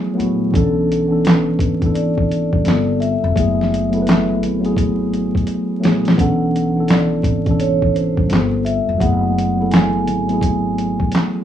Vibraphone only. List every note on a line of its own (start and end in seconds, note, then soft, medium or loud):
0.55 1.27 A4 medium
1.25 1.91 B4 medium
1.94 2.97 D5 loud
3.00 4.38 E5 loud
6.19 6.92 F#5 medium
6.89 7.62 D5 medium
7.59 7.92 C#5 medium
7.95 8.67 C5 medium
8.65 9.02 E5 loud
9.01 9.67 F#5 loud
9.71 11.08 G#5 medium